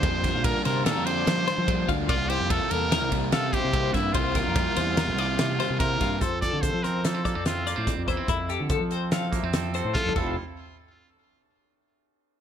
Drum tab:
CC |------------------------------|------------------------------|------------------------------|------------------------------|
RD |x--x--x--x--x--x--x--x--x--x--|x--x--x--x--x--x--x--x--x--x--|x--x--x--x--x--x--x--x--x--x--|------------------------------|
HH |------------------------------|------------------------------|------------------------------|x--x--x--x--x--x--x--x--x--x--|
SD |---o-----o--o-----o--o--------|------------o-----o--------o--|---o--o--o--o-----o--o--o--o--|---o-----o--o-----o-----o-----|
T2 |------------------------------|------------------------------|------------------------------|------------------------------|
BD |o--o--o-----------------o--o--|o-----o--------o-----o--o--o--|o--o--o-----------------o--o--|o--o--o--------o--------o--o--|

CC |---------------------------x--|------------------------------|
RD |------------------------------|------------------------------|
HH |x--x--x--x--x--x--x--x--------|------------------------------|
SD |------------o--o--o-----o-----|------------------------------|
T2 |--------------------------o---|------------------------------|
BD |o-----o--------o--------o--o--|------------------------------|